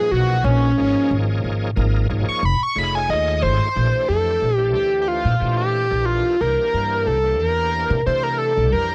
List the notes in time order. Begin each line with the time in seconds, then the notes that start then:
Already playing: A#2 F3 D#4 G#4 B4
0.11 B1 F#4
0.28 F#4
0.44 A#1 C#4
0.77 G#1 F3 A#3 C#4 D#4 G#4 C#5
1.11 G#1
1.44 G#1
1.76 G#1 F3 A#3 D#4 G#4 A#4
2.09 G#1 F3 A#3 D#4 G#4 C#5
2.29 C#6
2.43 F1 B5
2.63 C#6
2.75 F1 A3 D#4 F4 G#4 C#5 B5
2.95 G#5
3.09 D#2 D#5
3.42 G#1 C5
3.75 A#1 E3 A3 D4 G4 C5
4.08 F2 A4
4.42 A#1
4.55 E3 A3 D4 G4 C5
4.75 D2 G4
5.02 G4
5.08 F4
5.25 A#2
5.40 A#2 E3 A3 D4 G4 C5
5.57 G4
5.90 A#1 E3 D4 G4 A4 A#4
6.05 F4
6.40 C2 E3 A#3 D4 G4 A#4 C5
6.74 G2
7.06 C2 A4
7.24 E3 A#3 D4 G4 C5
7.39 E2 A#4
7.90 C3
8.06 C3 E3 A3 D4 G4 C5
8.23 A#4
8.38 A4
8.55 C2 E3 A3 D4 G4 D5
8.71 F2 E3 G3 D4 G4 A#4 C5